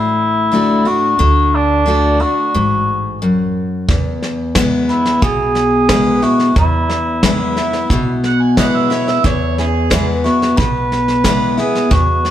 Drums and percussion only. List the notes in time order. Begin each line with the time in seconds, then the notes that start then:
3.88 kick, snare
4.22 snare
4.55 kick, snare, hi-hat pedal
4.89 snare
5.05 snare
5.22 kick, snare
5.55 snare
5.89 kick, snare, hi-hat pedal
6.22 snare
6.39 snare
6.56 kick, snare
6.89 snare
7.23 kick, snare, hi-hat pedal
7.56 snare
7.73 snare
7.90 kick, snare
8.23 snare
8.57 kick, snare, hi-hat pedal
8.91 snare
9.08 snare
9.24 kick, snare
9.58 snare
9.91 kick, snare, hi-hat pedal
10.25 snare
10.42 snare
10.58 kick, snare
10.92 snare
11.08 snare
11.24 kick, snare, hi-hat pedal
11.58 snare
11.75 snare
11.91 kick, snare
12.25 snare